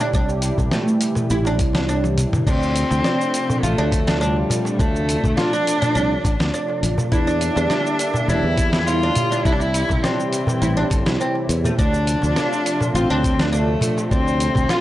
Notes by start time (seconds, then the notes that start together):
Already playing: D3 G3 E4 G4
0.00 D4, darbuka tek, cabasa
0.13 C2 C3 E3 D4, kick, cabasa
0.29 darbuka ka, cabasa
0.42 closed hi-hat, cabasa
0.58 C2, kick, darbuka tek, darbuka dum, cabasa
0.71 A3, snare, cabasa
0.88 cabasa
1.01 closed hi-hat, cabasa
1.15 darbuka tek, darbuka dum, cabasa
1.30 A1 E4, cabasa
1.45 D4, darbuka ka, darbuka tek, cabasa
1.59 C2, kick, closed hi-hat, darbuka tek, cabasa
1.73 D4, snare, darbuka ka, cabasa
1.89 D4, cabasa
2.04 high tom, darbuka ka, darbuka tek, cabasa
2.18 closed hi-hat, mid tom, darbuka ka, cabasa
2.33 mid tom, darbuka dum, cabasa
2.47 D2 F3 A3 C4 D4 F4, kick, crash, cabasa
2.62 darbuka ka, cabasa
2.76 closed hi-hat, cabasa
2.91 D2, darbuka tek, cabasa
3.04 D4, snare, cabasa
3.21 cabasa
3.34 closed hi-hat, cabasa
3.50 darbuka tek, darbuka dum, cabasa
3.63 A1 A3 F4, cabasa
3.78 D2 D4
3.92 kick, closed hi-hat, darbuka ka, cabasa
4.07 D4, snare, cabasa
4.21 G3 D4, cabasa
4.37 darbuka tek
4.50 closed hi-hat, darbuka dum, cabasa
4.65 darbuka tek, cabasa
4.79 D2 A3 D4, kick, cabasa
4.95 darbuka ka, cabasa
5.09 closed hi-hat, cabasa
5.24 D2, kick, darbuka tek, darbuka dum, cabasa
5.36 D4 F4, snare, cabasa
5.53 D4, cabasa
5.67 closed hi-hat, cabasa
5.82 D4, darbuka tek, darbuka dum, cabasa
5.95 C2 D4, cabasa
6.11 darbuka ka
6.24 A1, kick, closed hi-hat, darbuka tek, cabasa
6.40 D2, snare, darbuka ka, cabasa
6.54 D4, cabasa
6.68 darbuka ka, darbuka tek
6.83 A1, closed hi-hat, darbuka ka, cabasa
6.98 darbuka dum, cabasa
7.12 E2 D3 G3 A#3 D4 E4 G4 E5, kick, cabasa
7.27 D4, darbuka ka, cabasa
7.41 closed hi-hat, cabasa
7.56 E2 D4, darbuka tek, cabasa
7.70 D4, snare, cabasa
7.86 cabasa
7.99 closed hi-hat, cabasa
8.14 darbuka tek, darbuka dum, cabasa
8.28 E1 D4 E4, cabasa
8.43 E2
8.58 kick, closed hi-hat, darbuka ka, cabasa
8.73 snare, cabasa
8.87 E4 F4, cabasa
9.02 D4, darbuka tek
9.15 closed hi-hat, darbuka dum, cabasa
9.31 D4, darbuka tek, cabasa
9.45 C2 C3 E3 D4 E4, kick, cabasa
9.52 D4
9.60 E4, darbuka ka, cabasa
9.74 closed hi-hat, cabasa
9.89 C2, kick, darbuka tek, darbuka dum, cabasa
10.03 C4 D4, snare, cabasa
10.20 cabasa
10.33 closed hi-hat, cabasa
10.47 darbuka tek, darbuka dum, cabasa
10.62 A1 E4, cabasa
10.76 D4, darbuka ka
10.90 G1 A4, kick, closed hi-hat, darbuka tek, cabasa
11.06 C2 E4, snare, darbuka ka, cabasa
11.21 C4, cabasa
11.35 darbuka ka, darbuka tek
11.49 E2, closed hi-hat, darbuka ka, cabasa
11.64 A3, darbuka dum, cabasa
11.77 D2 F3 A3 D4 F4, kick, cabasa
11.93 darbuka ka, cabasa
12.07 closed hi-hat, cabasa
12.22 D2, darbuka tek, cabasa
12.36 D4, snare, cabasa
12.53 cabasa
12.66 closed hi-hat, cabasa
12.81 darbuka tek, darbuka dum, cabasa
12.94 A1 C4 F4, cabasa
13.10 D2 D4
13.23 kick, closed hi-hat, darbuka ka, cabasa
13.39 D4, snare, cabasa
13.53 A3 D4, cabasa
13.68 darbuka tek
13.81 closed hi-hat, darbuka dum, cabasa
13.98 darbuka tek, cabasa
14.11 D2 C4 D4 G4, kick, cabasa
14.27 darbuka ka, cabasa
14.40 closed hi-hat, cabasa
14.55 D2, kick, darbuka tek, darbuka dum, cabasa
14.69 F4, snare, cabasa